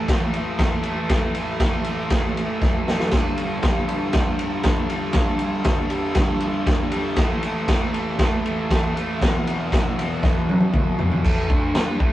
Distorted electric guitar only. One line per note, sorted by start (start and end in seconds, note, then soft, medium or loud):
0.00 0.12 A3 medium
0.08 0.59 A2 loud
0.08 0.37 E3 loud
0.13 0.32 A3 loud
0.33 0.82 A3 medium
0.38 0.87 E3 medium
0.83 1.13 A3 medium
0.88 1.10 E3 medium
1.10 1.59 A2 loud
1.10 1.40 E3 loud
1.15 1.35 A3 loud
1.36 1.64 A3 medium
1.41 1.62 E3 medium
1.60 2.10 A2 medium
1.60 1.89 E3 medium
1.65 1.85 A3 medium
1.86 2.16 A3 medium
1.91 2.13 E3 medium
2.11 2.62 A2 loud
2.11 2.40 E3 loud
2.17 2.36 A3 loud
2.37 2.86 A3 medium
2.42 2.91 E3 medium
2.87 3.11 A3 medium
2.92 3.14 E3 medium
3.14 3.65 G2 medium
3.14 3.43 D3 loud
3.18 3.40 G3 medium
3.40 3.69 G3 medium
3.45 3.66 D3 medium
3.65 4.14 G2 medium
3.65 3.93 D3 medium
3.70 3.89 G3 medium
3.89 4.18 G3 medium
3.94 4.16 D3 medium
4.14 4.65 G2 loud
4.14 4.44 D3 loud
4.20 4.39 G3 loud
4.41 4.87 G3 medium
4.45 4.92 D3 medium
4.89 5.18 G3 medium
4.93 5.17 D3 medium
5.16 5.64 G2 medium
5.16 5.45 D3 loud
5.16 5.40 G3 loud
5.41 5.69 G3 medium
5.46 5.67 D3 medium
5.65 6.15 G2 medium
5.65 5.94 D3 medium
5.70 5.89 G3 medium
5.90 6.20 G3 medium
5.95 6.18 D3 medium
6.16 6.67 G2 loud
6.16 6.45 D3 loud
6.22 6.40 G3 loud
6.42 6.91 G3 medium
6.46 6.96 D3 medium
6.92 7.17 G3 medium
6.97 7.17 D3 medium
7.17 7.68 A2 medium
7.17 7.48 E3 loud
7.23 7.43 A3 loud
7.44 7.73 A3 medium
7.49 7.71 E3 medium
7.69 8.15 A2 medium
7.69 7.98 E3 medium
7.74 7.92 A3 medium
7.93 8.20 A3 medium
7.98 8.19 E3 medium
8.16 8.69 A2 loud
8.16 8.48 E3 loud
8.21 8.43 A3 loud
8.44 8.94 A3 medium
8.49 9.00 E3 medium
8.95 9.19 A3 medium
9.00 9.25 E3 medium
9.20 9.72 E2 loud
9.20 9.51 B2 loud
9.25 9.46 E3 loud
9.47 9.76 E3 medium
9.52 9.75 B2 medium
9.73 10.21 E2 medium
9.73 10.01 B2 medium
9.77 9.96 E3 medium
9.97 10.27 E3 medium
10.02 10.24 B2 medium
10.23 10.74 E2 loud
10.23 10.54 B2 loud
10.28 10.48 E3 loud
10.49 10.97 E3 medium
10.55 11.03 B2 medium
10.98 11.22 E3 medium
11.04 11.24 B2 medium
11.24 11.49 A2 loud
11.24 11.49 E3 loud
11.24 11.49 A3 loud
11.50 11.74 D3 loud
11.50 11.74 A3 loud
11.50 11.74 D4 loud
11.74 11.99 G3 medium
11.74 12.00 D4 loud
11.74 12.00 G4 loud
11.99 12.13 A2 medium
11.99 12.13 E3 loud
11.99 12.13 A3 loud